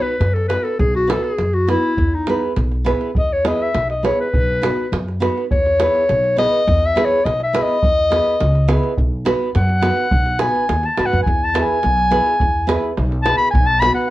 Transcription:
Already playing: B3 D#4 F#4 B4
0.02 B4
0.20 F#2, davul high
0.34 A4, davul high
0.48 B3 D#4 F#4 B4, davul high
0.64 A4, davul high
0.79 B1 G#4, davul low
0.95 F#4, davul high
1.08 B3 D#4 F#4 A4 B4, davul high
1.23 G#4, davul high
1.39 F#2, davul high
1.53 F#4, davul high
1.67 B3 D#4 E4 F#4 B4, davul high
1.83 davul high
1.97 E2, davul low
2.14 D#4
2.27 B3 E4 G#4 B4, davul high
2.56 B1, davul high
2.72 davul high
2.85 B3 E4 G#4 B4, davul high
3.01 davul high
3.15 E2 D#5, davul low
3.33 C#5
3.45 B3 E4 G#4 B4 D#5, davul high
3.62 E5
3.75 B1, davul high
3.90 D#5, davul high
4.03 B3 E4 G#4 B4 C#5, davul high
4.21 B4
4.34 B1, davul low
4.62 B3 D#4 F#4 B4, davul high
4.92 F#2, davul high
5.08 davul high
5.20 B3 D#4 F#4 B4, davul high
5.37 davul high
5.51 E2 C#5, davul low
5.66 davul high
5.80 B3 E4 G#4 B4, davul high
5.95 davul high
6.09 B1, davul high
6.24 davul high
6.36 B3 E4 G#4 B4 D#5, davul high
6.53 davul high
6.67 E2, davul low
6.86 E5
6.95 B3 E4 G#4 B4, davul high
7.04 C#5
7.24 B1 D#5, davul high
7.40 E5, davul high
7.53 B3 E4 G#4 B4, davul high
7.62 D#5
7.69 davul high
7.82 E2, davul low
8.10 B3 E4 G#4 B4, davul high
8.40 C#2, davul high
8.55 davul high
8.68 B3 E4 G#4 B4, davul high
8.83 davul high
8.97 B1, davul low
9.25 B3 D#4 F#4 B4, davul high
9.55 F#2 F#5, davul high
9.70 davul high
9.82 B3 D#4 F#4 B4, davul high
9.97 davul high
10.11 B1, davul low
10.26 davul high
10.39 B3 D#4 F#4 B4 G#5, davul high
10.55 davul high
10.69 D#2, davul high
10.83 A5, davul high
10.97 G#2 B3 D#4 F#4 B4, davul high
11.06 F#5
11.13 F#2, davul high
11.23 G#5, davul low
11.27 E2
11.44 A5
11.54 B3 E4 G#4 B4, davul high
11.58 G#5 A5
11.83 B1, davul high
11.97 davul high
12.10 B3 E4 G#4 B4, davul high
12.26 davul high
12.40 E2, davul low
12.67 B3 E4 G#4 B4, davul high
12.97 B1, davul high
13.12 davul high
13.22 B3 E4 A5, davul high
13.26 G#4 B4
13.37 B5, davul high
13.51 G#5, davul low
13.55 B1
13.66 A5
13.80 B3 D#4 F#4 B4 B5, davul high
13.94 F#5

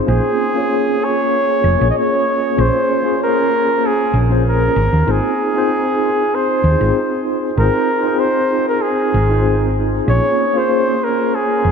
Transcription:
0.06 A#1 A#3 C#4 F4 G#4 C5
0.54 A#3 C#4 F4 G#4
0.58 C#5
1.04 C#5
1.64 F1
1.78 A#1 A#3 C#4 F4 G#4
1.82 C#5
1.91 D#5
1.98 C#5
2.56 A#1 A#3 C#4 F4 G#4 C5
3.03 A#3 C#4 F4 G#4
3.08 C5
3.23 A#4
3.86 G#4
4.14 A#1
4.30 A#3 C#4 F4 G#4 C5
4.49 A#4
4.76 G#1
4.93 D#2
5.07 G#1 C4 D#4 F4 G#4 C5
5.11 G#4
5.54 C4 D#4 F4 G#4 C5
6.35 C5
6.64 D#2
6.78 G#1 C4 D#4 F4 G#4
6.83 C5
7.56 G#1 C4 D#4 F4 G#4 A#4 C5
8.03 C4 D#4 F4 G#4
8.08 C5
8.20 C5
8.68 A#4
8.82 G#4
9.14 G#1
9.29 C4 D#4 F4 G#4
9.33 C5
10.06 A#1 A#3 C#4 F4 G#4 C#5
10.53 A#3 C#4 F4 G#4 C5
10.58 C5
11.04 A#4
11.35 G#4
11.65 F1

